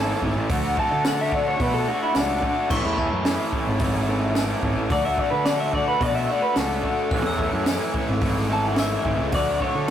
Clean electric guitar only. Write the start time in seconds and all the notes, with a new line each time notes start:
Already playing: A4
0.80 A5
1.07 F#5
1.21 E5
1.34 D5
1.48 C#5
1.61 B4
1.74 A4
1.88 F#4
2.03 E4
2.18 D4
4.92 D5
5.05 E5
5.19 D5
5.31 B4
5.45 D5
5.60 E5
5.75 D5
5.88 B4
6.02 D5
6.15 E5
6.29 D5
6.42 B4
6.56 A4
8.53 A5
8.67 F#5
8.79 E5
9.35 D5
9.62 C#5